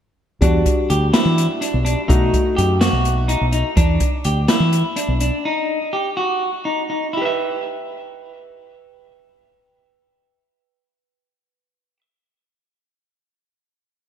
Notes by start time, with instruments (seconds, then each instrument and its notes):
0.41 fingered electric bass E2, grand piano G3 D4 F#4, clean electric guitar D4, kick, closed hi-hat
0.66 kick, closed hi-hat
0.90 fingered electric bass D2, clean electric guitar G4, closed hi-hat
1.13 clean electric guitar E4, snare, closed hi-hat
1.25 fingered electric bass E3
1.38 closed hi-hat
1.61 clean electric guitar D4, closed hi-hat
1.74 fingered electric bass B1
1.85 clean electric guitar D4, closed hi-hat
2.08 fingered electric bass B1, grand piano A3 D#4 F#4, clean electric guitar D#4, kick, closed hi-hat
2.34 kick, closed hi-hat
2.56 fingered electric bass F#2, clean electric guitar G4, closed hi-hat
2.81 clean electric guitar F#4, snare, closed hi-hat
2.93 fingered electric bass B1
3.05 closed hi-hat
3.28 clean electric guitar D#4, closed hi-hat
3.41 fingered electric bass B1
3.53 clean electric guitar D#4, closed hi-hat
3.77 fingered electric bass E2, clean electric guitar D4, kick, closed hi-hat
4.00 kick, closed hi-hat
4.24 fingered electric bass D2, clean electric guitar G4, closed hi-hat
4.48 clean electric guitar E4, snare, closed hi-hat
4.60 fingered electric bass E3
4.73 closed hi-hat
4.96 clean electric guitar D4, closed hi-hat
5.08 fingered electric bass B1
5.20 clean electric guitar D4, closed hi-hat
5.45 clean electric guitar D#4
5.93 clean electric guitar G4
6.17 clean electric guitar F#4
6.65 clean electric guitar D#4
6.90 clean electric guitar D#4
7.13 clean electric guitar E4
7.17 clean electric guitar G4
7.22 clean electric guitar B4 E5